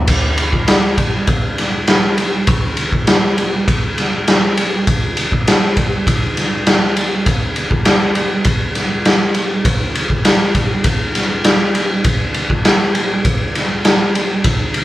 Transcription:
0.07 kick, crash, ride
0.38 ride
0.53 kick
0.68 snare, ride
0.98 kick, ride
1.27 kick, ride
1.58 snare, ride
1.87 snare, ride
2.18 ride
2.47 kick, ride
2.77 ride
2.93 kick
3.07 snare, ride
3.38 ride
3.68 kick, ride
3.98 snare, ride
4.28 snare, ride
4.57 ride
4.87 kick, ride
5.17 ride
5.32 kick
5.47 snare, ride
5.77 kick, ride
6.07 kick, ride
6.37 snare, ride
6.67 snare, ride
6.97 ride
7.26 kick, ride
7.56 ride
7.71 kick
7.85 snare, ride
8.15 ride
8.45 kick, ride
8.75 snare, ride
9.05 snare, ride
9.34 ride
9.65 kick, ride
9.95 ride
10.10 kick
10.25 snare, ride
10.55 kick, ride
10.84 kick, ride
11.15 snare, ride
11.44 snare, ride
11.75 ride
12.04 kick, ride
12.34 ride
12.50 kick
12.65 snare, ride
12.95 ride
13.25 kick, ride
13.55 snare, ride
13.85 snare, ride
14.15 ride
14.44 kick, ride
14.74 ride

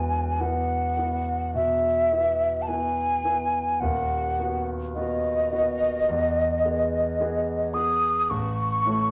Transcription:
Already playing: E1 E2 B3 E4 B4 G#5
0.40 B3 E4 B4 F#5
0.97 B3 E4 B4
1.55 B2 E5
2.12 B3 E4 B4
2.62 A5
2.68 B3 E4 B4 G#5
3.24 B3 E4 B4
3.80 D#1 D#2 F#5
4.39 B3 F#4 B4
4.95 B3 F#4 B4 D#5
5.52 B3 F#4 B4
6.09 E2
6.65 B3 G#4 B4
7.20 B3 G#4 B4
7.74 B3 G#4 B4 D#6
8.30 A1 C#6
8.86 A3 E4 C#5

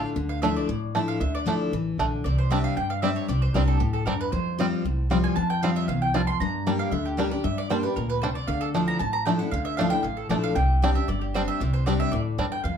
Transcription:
Already playing: A2 D3 A3 D4 F4
0.16 D2 D3
0.29 F5
0.42 F3 A3 D4 E4 E5
0.56 D5
0.68 A1 A2
0.95 F3 A3 D4 E4
1.08 F5
1.20 D2 D3 E5
1.35 D5
1.46 F3 A3 D4 E4
1.73 A1 E3
1.98 A#1 D3 A3 D4
2.24 C2 C3 D5
2.38 C5
2.50 G3 C4 D4 G4 E5
2.64 F5
2.77 G2 G5
2.90 F5
3.02 G3 C4 D4 G4 E5
3.16 C#5
3.28 C2 C3 D5
3.42 C5
3.54 C2 G3 C4 D4 G4 A#4
3.68 A4
3.80 D2 A2 G4
3.93 A4
4.06 E2 G2 G3 C4 D4 A#4
4.21 B4
4.32 F2 C5
4.58 F3 G3 C4 F4
4.85 C2 A2
5.10 F3 G3 C4 F4
5.24 G#5
5.36 F2 A5
5.50 G5
5.63 F3 G3 C4 F4 F5
5.76 E5
5.88 C2 E2 F5
6.02 G5
6.14 F2 G3 C4 F4 A5
6.27 C6
6.40 G2 A#5
6.66 G3 A#3 D4 G4
6.79 F5
6.91 D2 D3 E5
7.05 G4
7.17 G3 A#3 D4 G4 A#4
7.31 D4 G4 D5
7.44 G2 E5
7.58 D5
7.70 G3 A#3 D4 G4 C5
7.83 D4 G4 B4
7.96 D2 A#2 A#4
8.10 B4
8.22 C3 G3 D4 C5
8.35 D5
8.47 D2 D3 F5
8.61 A4
8.74 F3 A3 D4 E4
8.88 A#5
8.99 A1 A2 A5
9.13 A#5
9.25 F3 A3 D4 E4 G5
9.39 E4 F#5
9.43 D4
9.51 D2 D3 F5
9.65 E5
9.77 F3 A3 D4 E4 F5
9.90 E4 G5
9.94 D4
10.03 A1 A2 F5
10.17 A4
10.29 A#1 F3 A3 D4 E4 D5
10.44 F5
10.55 C2 C3 G5
10.82 G3 C4 D4 G4
10.95 D4 G4 E5
11.08 G1 G2 D5
11.21 G4
11.34 G3 C4 D4 G4 C5
11.48 E5
11.60 C2 C3 D5
11.73 C5
11.86 G3 C4 D4 G4 D5
12.00 E5
12.12 D2 A2 D5
12.38 E2 G2 G3 C4 D4
12.52 G5
12.64 F2 F5

